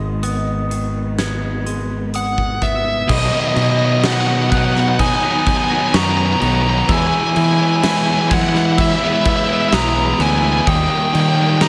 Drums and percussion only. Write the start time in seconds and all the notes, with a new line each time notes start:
0.23 closed hi-hat
0.71 closed hi-hat
1.19 snare, closed hi-hat
1.67 closed hi-hat
2.14 closed hi-hat
2.38 kick
2.62 kick, closed hi-hat
3.09 kick, crash
3.56 crash
4.04 snare, crash
4.52 kick, crash
4.76 snare
4.99 kick, crash
5.46 kick, crash
5.94 snare, crash
6.42 crash
6.89 kick, crash
7.36 crash
7.84 snare, crash
8.31 kick, crash
8.55 snare
8.78 kick, crash
9.26 kick, crash
9.73 snare, crash
10.20 crash
10.67 kick, crash
11.15 crash
11.61 snare, crash